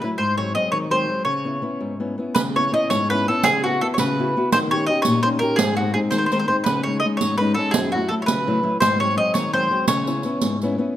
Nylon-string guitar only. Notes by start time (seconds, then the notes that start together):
0.03 F#3 A3 E4
0.19 G#2
0.38 F#3 G#3 C4
0.55 F#3 G#3 C4
0.72 D#3
0.90 F#3 G#3 C4
1.08 F#3 G#3 C4
1.25 C#3
1.45 B3 C#4 E4
1.62 B3 C#4 E4
1.80 G#2
2.00 B3 C#4 E4
2.18 B3 C#4 E4
2.36 C#3
2.55 B3 C#4 E4
2.71 B3 C#4 E4
2.91 G#2
3.11 B3 C#4 E4
3.28 B3 C#4 E4
3.45 C#3
3.65 B3 E4 F#4
3.82 B3 E4 F#4
3.99 C#3
4.19 B3 E4 F#4
4.37 B3 E4 F#4
4.54 D#3
4.71 C#4 D#4 G4
4.89 C#4 D#4 G4
5.07 A#2
5.24 C#4 D#4 G4
5.41 C#4 D#4 G4
5.58 G#2
5.78 G#3 C4 D#4
5.95 G#3 C4 D#4
6.12 D#3
6.31 G#3 C4 D#4
6.48 G#3 C4 D#4
6.67 C#3
6.86 G#3 C#4 D#4
7.04 G#3 C#4 D#4
7.21 G#2
7.40 G#3 C#4 D#4
7.58 G#3 C#4 D#4
7.75 F#2
7.94 F#3 A3 E4
8.11 F#3 A3 E4
8.29 C#3
8.47 F#3 A3 E4
8.63 F#3 A3 E4
8.80 G#2
9.00 F#3 G#3 C4
9.16 F#3 G#3 C4
9.34 D#3
9.53 F#3 G#3 C4
9.71 F#3 G#3 C4
9.88 C#3
10.07 B3 C#4 E4
10.25 B3 C#4 E4
10.42 G#2
10.63 B3 C#4 E4
10.78 B3 C#4 E4